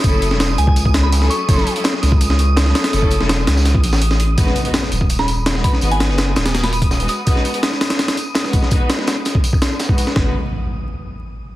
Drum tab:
HH |x-x-x-x-x-x-x-x-|x-xxx-x-x-x-x-xx|x-x-x-x-x-x-x-x-|x-xxx-x-x-x-x-x-|
TB |x-x-x-x-x-x-x-x-|x-x-x-x-x-x-x-x-|x-x-x-xxx-xx-x--|x-x-x-x-x-x-x-x-|
SD |---oo-----o-oo--|-o--ooo--o--oooo|o--oo-ooo-oo-o--|-o--oo---o--oo-o|
BD |o------o-o------|o------o--------|-o-------o------|o------o------o-|

HH |xxx-x-xxxxxx-xx-|x-xxx-xxxxx-x-x-|x-x-x-x-x-x-x-x-|----------------|
TB |x-x-x-x-x-x-x-x-|x-x-x-x-x-x-x-x-|x-x-x-x-x-x-x-x-|----------------|
SD |--ooo-oooo--o-o-|-o--oooooo--oo-o|--ooo-o---o-o-oo|o---------------|
BD |-----------o----|o-------------o-|o------o-o---o--|o---------------|